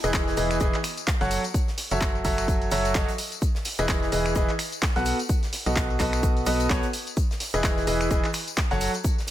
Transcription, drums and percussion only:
0.04 closed hi-hat, tambourine
0.13 kick, snare, clap, closed hi-hat, tambourine, shaker
0.28 snare, tambourine
0.37 open hi-hat, tambourine, shaker
0.50 finger snap, closed hi-hat, tambourine
0.60 kick, closed hi-hat, tambourine, shaker
0.74 clap, closed hi-hat, tambourine
0.84 finger snap, open hi-hat, tambourine, shaker
0.97 closed hi-hat, tambourine
1.07 kick, snare, clap, closed hi-hat, tambourine, shaker
1.21 snare, closed hi-hat, tambourine
1.31 open hi-hat, tambourine, shaker
1.44 closed hi-hat, tambourine
1.54 kick, closed hi-hat, tambourine, shaker
1.68 snare, tambourine
1.78 snare, open hi-hat, tambourine, shaker
1.91 closed hi-hat, tambourine
2.01 kick, snare, clap, closed hi-hat, tambourine, shaker
2.15 tambourine
2.24 kick, open hi-hat, tambourine, shaker
2.38 finger snap, closed hi-hat, tambourine
2.48 kick, closed hi-hat, tambourine, shaker
2.62 closed hi-hat, tambourine
2.71 open hi-hat, tambourine, shaker
2.85 closed hi-hat, tambourine
2.95 kick, snare, clap, closed hi-hat, tambourine, shaker
3.08 closed hi-hat, tambourine
3.18 open hi-hat, tambourine, shaker
3.32 closed hi-hat, tambourine
3.42 kick, closed hi-hat, tambourine, shaker
3.55 snare, tambourine
3.65 snare, open hi-hat, tambourine
3.78 closed hi-hat, tambourine
3.88 kick, snare, clap, closed hi-hat, tambourine, shaker
4.03 snare, tambourine
4.12 open hi-hat, tambourine, shaker
4.25 finger snap, closed hi-hat, tambourine
4.35 kick, closed hi-hat, tambourine, shaker
4.49 clap, closed hi-hat, tambourine
4.59 finger snap, open hi-hat, tambourine, shaker
4.72 closed hi-hat, tambourine
4.82 kick, snare, clap, closed hi-hat, tambourine, shaker
4.96 snare, closed hi-hat, tambourine
5.05 open hi-hat, tambourine, shaker
5.19 closed hi-hat, tambourine
5.29 kick, closed hi-hat, tambourine, shaker
5.43 snare, closed hi-hat, tambourine
5.53 snare, open hi-hat, tambourine, shaker
5.66 closed hi-hat, tambourine
5.76 kick, snare, clap, closed hi-hat, shaker
5.90 tambourine
5.99 kick, clap, open hi-hat, tambourine, shaker
6.13 finger snap, closed hi-hat, tambourine
6.23 kick, closed hi-hat, tambourine, shaker
6.37 closed hi-hat, tambourine
6.46 open hi-hat, tambourine, shaker
6.60 closed hi-hat, tambourine
6.70 kick, snare, clap, closed hi-hat, tambourine, shaker
6.83 closed hi-hat, tambourine
6.93 open hi-hat, tambourine, shaker
7.07 closed hi-hat, tambourine
7.17 kick, closed hi-hat, tambourine, shaker
7.31 snare, tambourine
7.40 snare, open hi-hat, tambourine
7.54 closed hi-hat, tambourine
7.64 kick, snare, clap, closed hi-hat, tambourine, shaker
7.77 snare, tambourine
7.87 open hi-hat, tambourine, shaker
8.01 finger snap, closed hi-hat, tambourine
8.11 kick, closed hi-hat, tambourine, shaker
8.24 clap, closed hi-hat, tambourine
8.33 finger snap, open hi-hat, tambourine, shaker
8.48 closed hi-hat, tambourine
8.57 kick, snare, clap, closed hi-hat, tambourine, shaker
8.71 snare, closed hi-hat, tambourine
8.81 open hi-hat, tambourine, shaker
8.94 closed hi-hat, tambourine
9.04 kick, closed hi-hat, tambourine, shaker
9.18 snare, tambourine
9.27 snare, tambourine

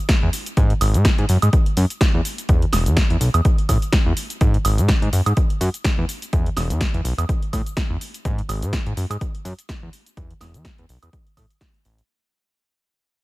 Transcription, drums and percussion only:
0.09 kick, snare, closed hi-hat, shaker
0.33 open hi-hat, shaker
0.46 closed hi-hat, shaker
0.57 kick, closed hi-hat, shaker
0.70 closed hi-hat
0.81 open hi-hat, high woodblock, shaker
0.94 closed hi-hat, shaker
1.05 kick, snare, closed hi-hat, shaker
1.18 closed hi-hat
1.29 open hi-hat, shaker
1.42 closed hi-hat, high woodblock, shaker
1.53 kick, closed hi-hat, shaker
1.66 closed hi-hat
1.77 open hi-hat, shaker
1.90 closed hi-hat, shaker
2.01 kick, snare, closed hi-hat, shaker
2.25 open hi-hat, shaker
2.38 closed hi-hat, shaker
2.49 kick, closed hi-hat, shaker
2.62 closed hi-hat
2.73 snare, open hi-hat, high woodblock, shaker
2.86 closed hi-hat, shaker
2.97 kick, snare, closed hi-hat, shaker
3.10 closed hi-hat
3.21 open hi-hat, shaker
3.34 closed hi-hat, high woodblock, shaker
3.45 kick, closed hi-hat, shaker
3.58 closed hi-hat
3.69 kick, open hi-hat, high woodblock, shaker
3.82 closed hi-hat, shaker
3.92 kick, snare, closed hi-hat, shaker
4.17 open hi-hat, shaker
4.30 closed hi-hat, shaker
4.41 kick, closed hi-hat, shaker
4.54 closed hi-hat
4.65 open hi-hat, high woodblock, shaker
4.78 closed hi-hat, shaker
4.88 kick, snare, closed hi-hat, shaker
5.02 closed hi-hat
5.13 open hi-hat, shaker
5.26 closed hi-hat, high woodblock, shaker
5.37 kick, closed hi-hat, shaker
5.50 closed hi-hat
5.61 open hi-hat, shaker
5.74 closed hi-hat, shaker
5.84 kick, snare, closed hi-hat, shaker
6.09 open hi-hat, shaker
6.22 closed hi-hat, shaker
6.33 kick, closed hi-hat, shaker
6.46 closed hi-hat
6.57 snare, open hi-hat, high woodblock, shaker
6.70 closed hi-hat, shaker
6.81 kick, snare, closed hi-hat, shaker
6.94 closed hi-hat
7.05 open hi-hat, shaker
7.18 closed hi-hat, high woodblock, shaker
7.29 kick, closed hi-hat, shaker
7.42 closed hi-hat
7.53 kick, open hi-hat, high woodblock, shaker
7.66 closed hi-hat, shaker
7.77 kick, snare, closed hi-hat, shaker
8.01 open hi-hat, shaker
8.14 closed hi-hat, shaker
8.25 kick, closed hi-hat, shaker
8.38 closed hi-hat
8.49 open hi-hat, high woodblock, shaker
8.62 closed hi-hat, shaker
8.73 kick, snare, closed hi-hat, shaker
8.87 closed hi-hat
8.97 open hi-hat, shaker
9.11 closed hi-hat, high woodblock, shaker
9.21 kick, closed hi-hat, shaker
9.35 closed hi-hat
9.45 open hi-hat, shaker
9.59 closed hi-hat, shaker
9.69 kick, snare, closed hi-hat, shaker
9.93 open hi-hat, shaker
10.06 closed hi-hat, shaker
10.17 kick, closed hi-hat, shaker
10.30 closed hi-hat
10.41 snare, open hi-hat, high woodblock, shaker
10.54 closed hi-hat, shaker
10.65 kick, snare, closed hi-hat, shaker
10.78 closed hi-hat
10.89 open hi-hat, shaker
11.03 closed hi-hat, high woodblock, shaker
11.13 kick, closed hi-hat, shaker
11.27 closed hi-hat
11.37 kick, open hi-hat, high woodblock, shaker
11.50 closed hi-hat, shaker
11.61 kick, snare, closed hi-hat
11.74 closed hi-hat
11.85 open hi-hat, shaker
11.98 closed hi-hat, shaker

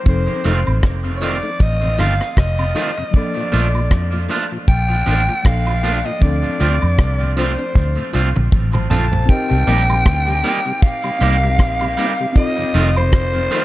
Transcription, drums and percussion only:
0.06 kick, closed hi-hat
0.44 closed hi-hat, tambourine
0.67 high woodblock
0.83 kick, cross-stick, closed hi-hat
1.05 closed hi-hat
1.21 closed hi-hat, tambourine
1.43 closed hi-hat
1.60 kick, closed hi-hat
1.98 cross-stick, closed hi-hat, tambourine
2.21 cross-stick, closed hi-hat
2.37 kick, cross-stick, closed hi-hat
2.59 closed hi-hat, high woodblock
2.75 open hi-hat, tambourine
2.97 closed hi-hat
3.14 kick, closed hi-hat
3.52 closed hi-hat, tambourine
3.75 high woodblock
3.91 kick, cross-stick, closed hi-hat
4.13 closed hi-hat
4.28 closed hi-hat, tambourine
4.51 closed hi-hat
4.68 kick, closed hi-hat
5.07 closed hi-hat, tambourine
5.29 closed hi-hat
5.45 kick, cross-stick, closed hi-hat
5.67 closed hi-hat, high woodblock
5.83 open hi-hat, tambourine
6.05 closed hi-hat
6.21 kick, closed hi-hat
6.60 closed hi-hat, tambourine
6.82 high woodblock
6.99 kick, cross-stick, closed hi-hat
7.21 closed hi-hat
7.37 closed hi-hat, tambourine
7.59 closed hi-hat
7.75 kick, high tom
8.13 tambourine
8.36 mid tom
8.52 kick, mid tom
8.73 mid tom, high woodblock
8.91 floor tom, tambourine
9.13 floor tom
9.29 kick, closed hi-hat
9.67 closed hi-hat, tambourine
9.90 high woodblock
10.06 kick, cross-stick, closed hi-hat
10.28 closed hi-hat
10.43 closed hi-hat, tambourine
10.65 closed hi-hat
10.82 kick, closed hi-hat
11.04 high woodblock
11.20 cross-stick, closed hi-hat, tambourine
11.43 closed hi-hat
11.59 kick, cross-stick, closed hi-hat
11.81 closed hi-hat, high woodblock
11.97 open hi-hat, tambourine
12.19 closed hi-hat
12.35 kick, closed hi-hat
12.74 closed hi-hat, tambourine
12.96 high woodblock
13.13 kick, cross-stick, closed hi-hat
13.35 closed hi-hat
13.50 closed hi-hat, tambourine

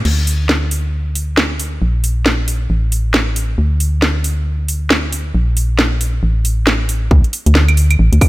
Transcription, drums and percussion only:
0.05 crash
0.27 open hi-hat
0.49 snare
0.71 open hi-hat
1.15 open hi-hat
1.37 snare
1.59 open hi-hat
2.04 open hi-hat
2.26 snare
2.48 open hi-hat
2.92 open hi-hat
3.14 snare
3.36 open hi-hat
3.80 open hi-hat
4.02 snare
4.24 open hi-hat
4.68 open hi-hat
4.90 snare
5.12 open hi-hat
5.57 open hi-hat
5.79 snare
6.01 open hi-hat
6.45 open hi-hat
6.67 snare
6.89 open hi-hat
7.11 kick
7.24 closed hi-hat
7.33 open hi-hat
7.46 closed hi-hat
7.55 snare
7.68 closed hi-hat, claves
7.77 open hi-hat
7.91 closed hi-hat, claves
8.13 closed hi-hat
8.21 kick, open hi-hat, claves

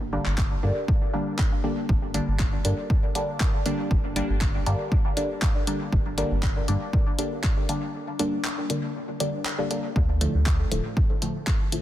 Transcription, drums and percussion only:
0.26 clap
0.38 kick, clap
0.88 kick
1.39 kick, clap
1.89 kick
2.14 closed hi-hat
2.40 kick, clap
2.65 closed hi-hat
2.90 kick
3.15 closed hi-hat
3.40 kick, clap
3.66 closed hi-hat
3.91 kick
4.16 closed hi-hat
4.41 kick, clap
4.66 closed hi-hat
4.92 kick
5.17 closed hi-hat
5.42 kick, clap
5.67 closed hi-hat
5.93 kick
6.18 closed hi-hat
6.43 kick, clap
6.68 closed hi-hat
6.93 kick
7.19 closed hi-hat
7.44 kick, clap
7.69 closed hi-hat
8.19 closed hi-hat
8.45 clap
8.70 closed hi-hat
9.20 closed hi-hat
9.45 clap
9.71 closed hi-hat
9.96 kick
10.21 closed hi-hat
10.46 kick, clap
10.72 closed hi-hat
10.97 kick
11.22 closed hi-hat
11.47 kick, clap
11.72 closed hi-hat

